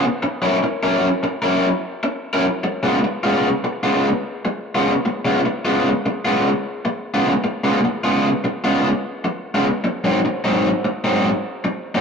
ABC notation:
X:1
M:4/4
L:1/16
Q:"Swing" 1/4=100
K:Dbmix
V:1 name="Overdriven electric guitar"
z2 [G,D_FB] z2 [G,DFB] z3 [G,DFB] z4 z [G,DFB] | z2 [D,A,CF] z2 [D,A,CF] z3 [D,A,CF] z4 z [D,A,CF] | z2 [D,A,CF] z2 [D,A,CF] z3 [D,A,CF] z4 z [D,A,CF] | z2 [D,A,CF] z2 [D,A,CF] z3 [D,A,CF] z4 z [D,A,CF] |
z2 [A,,G,=CE] z2 [A,,G,CE] z3 [A,,G,CE] z4 z [A,,G,CE] |]